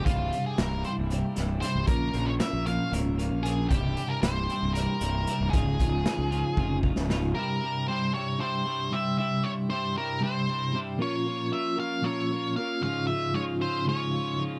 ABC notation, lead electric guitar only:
X:1
M:7/8
L:1/16
Q:1/4=115
K:none
V:1 name="Lead electric guitar"
F3 _A _B2 c2 z4 c2 | _B3 _d e2 f2 z4 _A2 | G3 _B c4 B6 | _A8- A2 z4 |
_B4 c2 _d2 c4 e2 | e2 _d2 c2 _B2 c4 z2 | _d4 e2 f2 d4 f2 | f2 e2 _d2 c2 d4 z2 |]